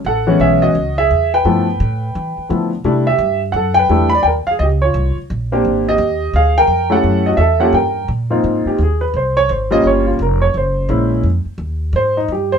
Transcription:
0.05 upright bass A1, upright piano A4 F#5
0.27 upright piano E3 G#3 B3 C#4
0.40 upright bass B1, upright piano G#4 E5
0.62 upright piano F#4 D#5
0.75 upright bass C#2
0.98 upright piano G#4 E5
1.11 upright bass E2
1.34 upright piano B4 G5
1.45 upright bass G2, upright piano F3 A3 B3 E4
1.80 upright bass A2
2.15 upright bass E3
2.38 muted upright bass stroke
2.49 upright bass D3, upright piano F3 A3 B3 E4
2.84 upright bass C3, upright piano G3 A3 D4 E4
3.07 upright piano G4 E5
3.19 upright bass G2
3.52 upright bass F#2, upright piano F#5
3.56 upright piano A4
3.74 upright piano G5
3.79 upright piano B4
3.89 upright bass E2, upright piano G3 A3 D4 E4
4.10 upright piano B5
4.14 upright piano D5
4.23 upright bass D#2, upright piano G5
4.27 upright piano A#4
4.47 upright piano F5, muted upright bass stroke
4.51 upright piano G#4
4.59 upright bass C#2, upright piano G4 D#5
4.82 upright piano F4 C#5
4.94 upright bass C2
5.16 muted upright bass stroke
5.30 upright bass A#1
5.52 upright piano A#3 C4 D4 G4
5.65 upright bass G#1
5.89 upright piano G4 D#5
5.98 upright bass D#2
6.33 upright bass D2, upright piano G#4 F5
6.58 upright piano A#4 G5
6.67 upright bass F2
6.90 upright piano A3 C#4 E4 G4 A4 F#5
7.04 upright bass F#2
7.26 upright piano F#4 D#5
7.37 upright bass E2, upright piano A4 E5
7.60 upright piano A#3 C#4 F4 G4 A4 F#5
7.73 upright bass G2, upright piano A#4 G5
8.08 upright bass A#2
8.30 upright piano G#2 A#3 C4 D#4 F4
8.44 upright bass G#2
8.65 upright piano G4, muted upright bass stroke
8.78 upright bass D#2
8.83 upright piano G#4
9.01 upright piano B4
9.14 upright bass C2, upright piano C5
9.37 upright piano C#5
9.49 upright bass G#1, upright piano C5
9.71 upright piano G3 A#3 C#4 F4 D#5
9.84 upright bass G1, upright piano C#5
10.07 upright piano F4
10.19 upright bass F1, upright piano A#4
10.42 upright piano C#5
10.54 upright bass F#1, upright piano C5
10.89 upright bass A#1, upright piano G#3 A#3 C#4 E4
11.23 upright bass F2
11.45 muted upright bass stroke
11.58 upright bass D#2
11.93 upright bass G#2, upright piano C5
12.17 upright piano D#4
12.28 upright bass G2, upright piano G4
12.52 upright piano C5

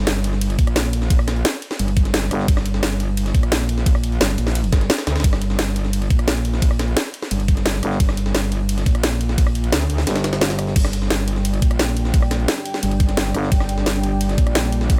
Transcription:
Already playing: wobble bass G1
0.07 snare, closed hi-hat, ride
0.24 closed hi-hat
0.33 snare
0.41 closed hi-hat, ride
0.50 closed hi-hat
0.59 wobble bass A#1, kick, closed hi-hat
0.67 cross-stick, closed hi-hat
0.76 snare, closed hi-hat, ride
0.85 closed hi-hat
0.93 closed hi-hat
1.02 snare
1.10 kick, closed hi-hat, ride
1.19 cross-stick
1.28 snare, closed hi-hat
1.36 closed hi-hat
1.45 snare, closed hi-hat, ride
1.54 closed hi-hat
1.62 closed hi-hat
1.71 snare
1.79 wobble bass G1, closed hi-hat, ride
1.88 closed hi-hat
1.97 kick, closed hi-hat
2.05 snare, closed hi-hat
2.14 snare, closed hi-hat, ride
2.23 snare
2.31 fm bass G1, cross-stick, closed hi-hat
2.40 snare
2.48 wobble bass G1, kick, closed hi-hat, ride
2.57 cross-stick, snare
2.66 closed hi-hat
2.74 snare
2.83 snare, closed hi-hat, ride
3.00 closed hi-hat
3.17 closed hi-hat, ride
3.26 snare, closed hi-hat
3.35 wobble bass A#1, kick, closed hi-hat
3.43 cross-stick, closed hi-hat
3.52 snare, closed hi-hat, ride
3.60 closed hi-hat
3.69 closed hi-hat
3.78 snare
3.86 kick, closed hi-hat, ride
3.95 cross-stick
4.04 closed hi-hat
4.12 closed hi-hat
4.21 wobble bass G1, snare, closed hi-hat, open hi-hat, ride
4.29 closed hi-hat
4.38 wobble bass A#1, closed hi-hat
4.47 snare
4.55 closed hi-hat, ride
4.64 closed hi-hat
4.73 wobble bass G1, kick, snare, closed hi-hat
4.81 snare, closed hi-hat
4.90 snare, closed hi-hat, ride
4.98 snare, closed hi-hat
5.07 wobble bass D2, cross-stick, snare, closed hi-hat
5.16 snare, closed hi-hat
5.20 snare, closed hi-hat
5.24 wobble bass G1, kick, closed hi-hat, ride
5.33 cross-stick, snare
5.41 closed hi-hat
5.50 snare
5.59 snare, closed hi-hat, ride
5.76 closed hi-hat
5.85 snare
5.93 closed hi-hat, ride
6.02 closed hi-hat
6.10 wobble bass A#1, kick, closed hi-hat
6.19 cross-stick, closed hi-hat
6.28 snare, closed hi-hat, ride
6.36 closed hi-hat
6.45 closed hi-hat
6.54 snare
6.62 kick, closed hi-hat, ride
6.71 cross-stick
6.79 snare, closed hi-hat
6.88 closed hi-hat
6.97 snare, closed hi-hat, ride
7.05 closed hi-hat
7.14 closed hi-hat
7.23 snare
7.31 wobble bass G1, closed hi-hat, ride
7.40 closed hi-hat
7.48 kick, closed hi-hat
7.57 snare, closed hi-hat
7.66 snare, closed hi-hat, ride
7.74 snare
7.83 fm bass G1, cross-stick, closed hi-hat
7.91 snare
8.00 wobble bass G1, kick, closed hi-hat, ride
8.09 cross-stick, snare
8.17 closed hi-hat
8.26 snare
8.35 snare, closed hi-hat, ride
8.52 closed hi-hat
8.69 closed hi-hat, ride
8.78 snare, closed hi-hat
8.86 wobble bass A#1, kick, closed hi-hat
8.95 cross-stick, closed hi-hat
9.03 snare, closed hi-hat, ride
9.12 closed hi-hat
9.21 closed hi-hat
9.29 snare
9.38 kick, closed hi-hat, ride
9.47 cross-stick
9.55 closed hi-hat
9.64 closed hi-hat
9.72 wobble bass D2, snare, closed hi-hat, open hi-hat, ride
9.81 closed hi-hat
9.90 closed hi-hat
9.98 snare
10.07 fm bass G1, snare, closed hi-hat, ride
10.16 snare, closed hi-hat
10.24 snare, closed hi-hat
10.33 snare, closed hi-hat
10.41 snare, closed hi-hat, ride
10.50 snare, closed hi-hat
10.59 cross-stick, closed hi-hat
10.67 snare
10.76 wobble bass G1, analog synth pad G3 D4 D5 G5, kick, closed hi-hat, crash, ride
10.85 cross-stick, snare
10.93 closed hi-hat
11.02 snare
11.10 snare, closed hi-hat, ride
11.28 closed hi-hat
11.36 snare
11.45 closed hi-hat, ride
11.54 closed hi-hat
11.62 wobble bass A#1, kick, closed hi-hat
11.71 cross-stick, closed hi-hat
11.79 snare, closed hi-hat, ride
11.88 closed hi-hat
11.97 closed hi-hat
12.05 snare
12.14 kick, closed hi-hat, ride
12.22 cross-stick
12.31 snare, closed hi-hat
12.40 closed hi-hat
12.48 snare, closed hi-hat, ride
12.57 closed hi-hat
12.66 closed hi-hat
12.74 snare
12.83 wobble bass G1, closed hi-hat, ride
12.91 closed hi-hat
13.00 kick, closed hi-hat
13.09 snare, closed hi-hat
13.17 snare, closed hi-hat, ride
13.26 snare
13.35 fm bass G1, cross-stick, closed hi-hat
13.43 snare
13.52 wobble bass G1, kick, closed hi-hat, ride
13.60 cross-stick, snare
13.69 closed hi-hat
13.78 snare
13.86 snare, closed hi-hat, ride
14.04 closed hi-hat
14.21 closed hi-hat, ride
14.29 snare, closed hi-hat
14.38 wobble bass A#1, kick, closed hi-hat
14.47 cross-stick, closed hi-hat
14.55 snare, closed hi-hat, ride
14.64 closed hi-hat
14.72 closed hi-hat
14.81 snare
14.90 kick, closed hi-hat, ride

